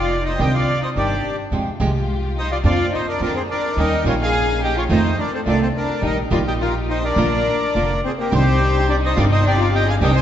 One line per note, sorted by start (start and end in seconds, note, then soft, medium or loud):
0.00 0.35 F1 medium
0.00 0.35 A#3 medium
0.00 0.35 D#4 medium
0.00 0.22 F4 medium
0.00 0.35 F4 medium
0.00 0.24 D5 medium
0.00 0.23 F5 medium
0.24 0.37 D#4 medium
0.24 0.40 D#5 medium
0.28 0.40 C5 medium
0.37 0.63 C2 medium
0.37 0.48 C3 medium
0.37 0.49 D#3 medium
0.37 0.49 G3 medium
0.37 0.63 C4 medium
0.37 0.63 D4 medium
0.37 0.49 D4 medium
0.37 0.63 D#4 medium
0.37 0.51 G4 medium
0.37 0.49 G4 medium
0.37 0.53 G5 medium
0.42 0.54 D#5 medium
0.52 0.79 F4 medium
0.52 0.81 D5 medium
0.52 0.80 F5 medium
0.80 0.87 D#4 medium
0.80 0.89 D#5 medium
0.84 0.90 C5 medium
0.95 1.19 G1 medium
0.95 1.13 C3 soft
0.95 1.13 D#3 medium
0.95 1.13 G3 medium
0.95 1.20 C4 soft
0.95 1.35 D4 medium
0.95 1.20 D4 soft
0.95 1.14 D4 medium
0.95 1.20 D#4 soft
0.95 1.13 G4 medium
0.95 1.36 G4 medium
0.95 1.36 D5 medium
1.51 1.75 F2 soft
1.51 1.69 C3 medium
1.51 1.69 F3 medium
1.51 1.76 G#3 soft
1.51 1.69 G#3 medium
1.51 1.69 C4 medium
1.51 1.76 F4 soft
1.51 1.76 G4 soft
1.51 1.69 G4 medium
1.80 2.60 C2 medium
1.80 1.89 C3 medium
1.80 1.89 F3 medium
1.80 2.60 G#3 medium
1.80 1.89 G#3 medium
1.80 1.89 C4 medium
1.80 2.60 F4 medium
1.80 2.60 G4 medium
1.80 1.90 G4 medium
2.37 2.50 D#4 medium
2.37 2.51 C5 medium
2.37 2.51 D#5 medium
2.51 2.57 F4 medium
2.51 2.58 D5 medium
2.51 2.58 F5 medium
2.64 2.88 F2 medium
2.64 2.73 D3 medium
2.64 2.88 A#3 medium
2.64 2.88 C4 medium
2.64 2.74 C4 medium
2.64 2.88 D4 medium
2.64 2.91 F4 medium
2.64 2.74 F4 medium
2.64 2.91 D5 medium
2.64 2.91 F5 medium
2.93 3.06 D#4 medium
2.93 3.06 C5 medium
2.93 3.08 D#5 medium
3.07 3.20 D4 medium
3.07 3.21 A#4 medium
3.07 3.21 D5 medium
3.20 3.44 F2 medium
3.20 3.38 D3 medium
3.20 3.44 A#3 soft
3.20 3.44 C4 soft
3.20 3.38 C4 medium
3.20 3.44 D4 medium
3.20 3.34 D4 medium
3.20 3.38 F4 medium
3.20 3.35 A#4 medium
3.20 3.35 D5 medium
3.35 3.41 C4 medium
3.35 3.42 G#4 medium
3.35 3.42 C5 medium
3.49 3.75 D4 medium
3.49 3.76 A#4 medium
3.49 3.79 D5 medium
3.76 4.00 D#2 medium
3.76 3.94 D#3 medium
3.76 4.00 G3 soft
3.76 3.95 G3 medium
3.76 4.00 C#4 soft
3.76 3.95 C#4 medium
3.76 4.01 D#4 medium
3.76 4.04 D#4 medium
3.76 3.95 G4 medium
3.76 4.04 A#4 medium
3.76 4.05 D#5 medium
4.04 4.85 A#1 medium
4.04 4.14 D#3 medium
4.04 4.14 G3 medium
4.04 4.85 A#3 medium
4.04 4.85 C#4 medium
4.04 4.15 C#4 medium
4.04 4.85 D#4 medium
4.04 4.12 F4 medium
4.04 4.15 G4 loud
4.09 4.14 C#5 medium
4.09 4.14 F5 medium
4.20 4.59 G#4 medium
4.20 4.60 F5 medium
4.20 4.61 G#5 medium
4.62 4.75 G4 medium
4.62 4.76 D#5 medium
4.62 4.76 G5 medium
4.76 4.82 F4 medium
4.76 4.84 C#5 medium
4.76 4.84 F5 medium
4.89 5.13 F2 medium
4.89 4.99 C3 medium
4.89 4.99 D#3 medium
4.89 5.13 A3 medium
4.89 4.99 A3 medium
4.89 4.99 C4 medium
4.89 5.13 D#4 medium
4.89 5.16 D#4 medium
4.89 5.13 F4 medium
4.89 4.99 F4 medium
4.89 5.17 C5 medium
4.89 5.20 D#5 medium
5.18 5.31 D4 medium
5.18 5.32 A#4 medium
5.18 5.32 D5 medium
5.32 5.39 C4 medium
5.32 5.40 A4 medium
5.32 5.41 C5 medium
5.45 5.70 C2 medium
5.45 5.63 C3 medium
5.45 5.63 D#3 medium
5.45 5.69 A3 soft
5.45 5.63 A3 medium
5.45 5.63 C4 medium
5.45 5.59 D4 medium
5.45 5.69 D#4 soft
5.45 5.70 F4 soft
5.45 5.64 F4 medium
5.45 5.60 A4 medium
5.45 5.61 D5 medium
5.61 5.67 C4 medium
5.61 5.68 A4 medium
5.61 5.68 C5 medium
5.76 6.02 D4 medium
5.76 6.02 A#4 medium
5.76 6.02 D5 medium
6.01 6.26 A#1 medium
6.01 6.19 D#3 medium
6.01 6.19 G3 medium
6.01 6.26 A#3 medium
6.01 6.26 D#4 soft
6.01 6.16 D#4 medium
6.01 6.20 D#4 medium
6.01 6.26 G4 medium
6.01 6.20 G4 medium
6.06 6.18 A#4 medium
6.06 6.18 D#5 medium
6.30 7.13 A#1 medium
6.30 6.40 D#3 medium
6.30 6.40 G3 medium
6.30 7.13 A#3 medium
6.30 7.13 D#4 medium
6.30 6.40 D#4 medium
6.30 6.38 F4 medium
6.30 6.40 G4 loud
6.30 7.13 G4 medium
6.30 6.39 D5 medium
6.30 6.39 F5 medium
6.47 6.53 G4 medium
6.47 6.53 D#5 medium
6.47 6.54 G5 medium
6.61 6.74 F4 medium
6.61 6.74 A#4 medium
6.61 6.74 F5 medium
6.89 7.02 D#4 medium
6.89 7.03 C5 medium
6.89 7.04 D#5 medium
7.04 8.00 D4 medium
7.04 8.00 A#4 medium
7.04 8.01 D5 medium
7.16 7.41 A#1 loud
7.16 7.26 D3 medium
7.16 7.41 A#3 medium
7.16 7.26 A#3 medium
7.16 7.41 D4 medium
7.16 7.27 D4 medium
7.16 7.41 F4 medium
7.16 7.27 F4 medium
7.75 7.99 F1 medium
7.75 7.92 D3 medium
7.75 7.99 A#3 soft
7.75 7.93 A#3 medium
7.75 7.99 D4 soft
7.75 7.93 D4 medium
7.75 7.99 F4 soft
7.75 7.93 F4 medium
8.04 8.10 C4 medium
8.04 8.12 G#4 medium
8.04 8.11 C5 medium
8.18 8.31 A#3 medium
8.18 8.33 G4 medium
8.18 8.32 A#4 medium
8.31 9.13 C2 medium
8.31 8.41 C3 medium
8.31 8.41 D#3 medium
8.31 8.41 G3 medium
8.31 9.12 C4 medium
8.31 8.85 C4 medium
8.31 9.12 D4 medium
8.31 8.41 D4 medium
8.31 9.13 D#4 medium
8.31 8.41 G4 medium
8.31 8.92 C5 loud
8.36 8.87 G4 medium
8.89 8.95 D4 medium
8.89 8.96 G4 medium
8.89 8.96 D5 medium
9.03 9.16 D#4 medium
9.03 9.18 C5 medium
9.03 9.17 D#5 medium
9.16 9.97 G1 medium
9.16 9.26 C3 medium
9.16 9.26 D#3 medium
9.16 9.26 G3 medium
9.16 9.97 C4 medium
9.16 9.97 D4 medium
9.16 9.26 D4 loud
9.16 9.97 D#4 medium
9.16 9.23 F4 medium
9.16 9.26 G4 medium
9.16 9.25 D5 medium
9.16 9.24 F5 medium
9.29 9.43 D#4 medium
9.29 9.45 D#5 medium
9.33 9.45 C5 medium
9.43 9.57 D4 medium
9.43 9.60 D5 medium
9.47 9.59 G4 medium
9.58 9.72 F4 medium
9.58 9.74 D5 medium
9.58 9.74 F5 medium
9.72 9.85 G4 medium
9.72 9.87 G5 medium
9.76 9.88 D#5 medium
9.87 9.93 G#4 medium
9.87 9.96 F5 medium
9.87 9.95 G#5 medium
10.01 10.22 C2 medium
10.01 10.10 C3 medium
10.01 10.10 D#3 medium
10.01 10.11 G3 medium
10.01 10.22 C4 medium
10.01 10.22 D4 medium
10.01 10.11 D4 medium
10.01 10.22 D#4 medium
10.01 10.14 G4 medium
10.01 10.11 G4 medium
10.01 10.16 D#5 medium
10.01 10.15 G5 medium
10.14 10.22 C5 medium
10.14 10.22 G#5 medium
10.14 10.22 C6 medium